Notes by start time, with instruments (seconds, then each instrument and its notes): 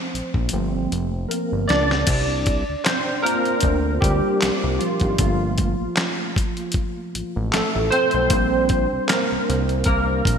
Already playing: tine electric piano F3 A3 C4 C5
0.14 analog synth bass A#1, closed hi-hat
0.34 analog synth bass A#1, kick
0.49 tine electric piano F3 A3 A#3 C4, closed hi-hat
0.53 analog synth bass G1
0.92 analog synth bass F1, closed hi-hat
1.29 tine electric piano A#3 A#4, closed hi-hat
1.52 analog synth bass G1
1.68 analog synth bass C#2, tine electric piano D4 D5, snare, closed hi-hat
1.91 snare
2.07 analog synth bass C2, kick, closed hi-hat, crash
2.46 kick, closed hi-hat
2.69 analog synth bass D2
2.84 tine electric piano C4 C5, snare, clap, closed hi-hat
3.22 tine electric piano A#3 D4 F4 A#4
3.26 closed hi-hat
3.46 closed hi-hat
3.60 analog synth bass D2, kick, closed hi-hat
4.01 analog synth bass D2, tine electric piano G3 G4, kick, closed hi-hat
4.42 analog synth bass C2, snare, clap, closed hi-hat
4.64 analog synth bass C2
4.79 tine electric piano F3 F4, closed hi-hat
5.00 analog synth bass G#1, kick, closed hi-hat
5.18 analog synth bass G1, tine electric piano A3 A#3 F4, kick, closed hi-hat
5.58 kick, closed hi-hat
5.81 analog synth bass A1
5.97 snare, clap, closed hi-hat
6.36 kick, closed hi-hat
6.57 closed hi-hat
6.72 kick, closed hi-hat
7.15 analog synth bass A1, closed hi-hat
7.36 analog synth bass A1
7.52 analog synth bass A1, tine electric piano A3 A4, snare, clap, closed hi-hat
7.75 analog synth bass A1
7.90 tine electric piano C4 C5, closed hi-hat
8.11 analog synth bass B1, closed hi-hat
8.30 analog synth bass A#1, tine electric piano G3 C4 D4, kick, closed hi-hat
8.69 kick, closed hi-hat
8.92 analog synth bass C2
9.08 tine electric piano A#3 A#4, snare, clap, closed hi-hat
9.32 analog synth bass C2
9.49 analog synth bass C2, closed hi-hat
9.69 closed hi-hat
9.84 analog synth bass C2, tine electric piano A#3 A#4, kick, closed hi-hat
10.25 analog synth bass A#1, kick, closed hi-hat